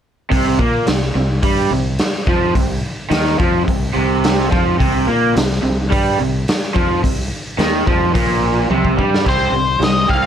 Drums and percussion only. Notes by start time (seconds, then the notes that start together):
0.32 kick, open hi-hat
0.59 kick
0.87 snare, open hi-hat
1.02 snare
1.43 kick, open hi-hat
1.98 snare, open hi-hat
2.27 kick, snare
2.55 kick, open hi-hat
3.11 snare, open hi-hat
3.26 snare
3.40 kick
3.68 kick, open hi-hat
4.24 snare, open hi-hat
4.52 kick, snare
4.80 kick, open hi-hat
5.36 snare, open hi-hat
5.52 snare
5.92 kick, open hi-hat
6.48 snare, open hi-hat
6.76 kick
7.04 kick, open hi-hat
7.59 snare, open hi-hat
7.87 kick
8.15 kick, open hi-hat
8.71 high tom
8.85 kick
8.99 kick
9.14 snare
9.26 kick, open hi-hat
9.82 snare, open hi-hat
10.09 kick